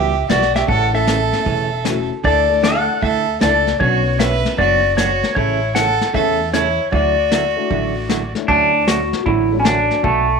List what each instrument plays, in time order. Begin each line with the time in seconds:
Already playing: upright bass C#2, hollow-body jazz guitar E3 G3 B3 F#4, fiddle G4, electric slide guitar E5
0.29 upright bass B1, hollow-body jazz guitar E3 G3 B3 F#4, fiddle F#4, electric slide guitar D5, snare, hi-hat pedal
0.43 snare
0.55 fiddle G4, electric slide guitar E5, snare
0.67 upright bass A1, hollow-body jazz guitar C#3 E3 A3 C#4 A4, fiddle A4, electric slide guitar F#5, brush sweep, kick
0.93 upright piano A3 C#4 E4 A4, fiddle A4, electric slide guitar E5
1.07 hollow-body jazz guitar C#3 E3 A3 C#4 A4, snare, hi-hat pedal
1.33 snare
1.45 upright bass E1, hollow-body jazz guitar C#3 E3 A3 C#4 A4, brush sweep, kick
1.85 hollow-body jazz guitar C#3 E3 A3 C#4 A4, upright piano A3 C#4 E4 F#4, snare, hi-hat pedal
2.23 upright bass D2, hollow-body jazz guitar D3 A3 D4 E4 A4, fiddle A4, electric slide guitar D5, brush sweep, kick
2.50 upright piano A3 D4 E4 A4
2.63 hollow-body jazz guitar D3 A3 D4 E4 A4, fiddle A4, electric slide guitar F#5, snare, hi-hat pedal
3.02 upright bass D2, hollow-body jazz guitar D3 A3 D4 E4 A4, fiddle A4, electric slide guitar E5, brush sweep, kick
3.40 upright bass C#2, hollow-body jazz guitar D3 A3 D4 E4 A4, upright piano A3 D4 E4 A4, fiddle A4, electric slide guitar D5, snare, hi-hat pedal
3.67 snare
3.79 upright bass B1, hollow-body jazz guitar B2 F#3 B3 D4 F#4 C#5, upright piano B3 C#4 D4 F#4, fiddle F#4, electric slide guitar C#5, brush sweep, kick
4.19 hollow-body jazz guitar B2 F#3 B3 D4 F#4 C#5, fiddle B4, electric slide guitar E5, snare, hi-hat pedal
4.45 snare
4.58 upright bass F#1, hollow-body jazz guitar B2 F#3 B3 D4 F#4 C#5, fiddle F#4, electric slide guitar D5, brush sweep, kick
4.97 hollow-body jazz guitar B2 F#3 B3 D4 F#4 C#5, fiddle F#4, electric slide guitar C#5, snare, hi-hat pedal
5.23 snare
5.35 upright bass A1, hollow-body jazz guitar C#3 E3 A3 C#4 A4, fiddle E4, electric slide guitar C#5, brush sweep, kick
5.75 hollow-body jazz guitar C#3 E3 A3 C#4 A4, fiddle A4, electric slide guitar F#5, snare, hi-hat pedal
6.01 snare
6.14 upright bass E2, hollow-body jazz guitar C#3 E3 A3 C#4 A4, upright piano A3 C#4 E4 A4, fiddle A4, electric slide guitar E5, brush sweep, kick
6.53 hollow-body jazz guitar C#3 E3 A3 C#4 A4, fiddle E4, electric slide guitar C#5, snare, hi-hat pedal
6.92 upright bass D2, hollow-body jazz guitar D3 F#3 A3 E4 F#4, fiddle F#4, electric slide guitar D5, brush sweep, kick
7.31 hollow-body jazz guitar D3 F#3 A3 E4 F#4, snare, hi-hat pedal
7.57 upright piano A3 D4 E4 F#4
7.70 upright bass A1, hollow-body jazz guitar D3 F#3 A3 E4 F#4, brush sweep, kick
8.09 hollow-body jazz guitar D3 F#3 A3 E4 F#4, snare, hi-hat pedal
8.35 upright piano A3 D4 E4 C#5, snare
8.48 upright bass D2, hollow-body jazz guitar D3 F#3 A3 C#4 F#4, electric slide guitar D4, brush sweep, kick
8.87 hollow-body jazz guitar D3 F#3 A3 C#4 F#4, electric slide guitar F#4, snare, hi-hat pedal
9.13 snare
9.26 upright bass A1, hollow-body jazz guitar D3 F#3 A3 C#4 F#4, electric slide guitar E4, brush sweep, kick
9.51 upright piano F#3 A3 D4 F#4 C#5
9.60 electric slide guitar C#4
9.64 hollow-body jazz guitar D3 F#3 A3 C#4 F#4, electric slide guitar D4, snare, hi-hat pedal
9.91 snare
10.03 upright bass B1, hollow-body jazz guitar B2 F#3 A3 D#4 F#4, electric slide guitar A3, brush sweep, kick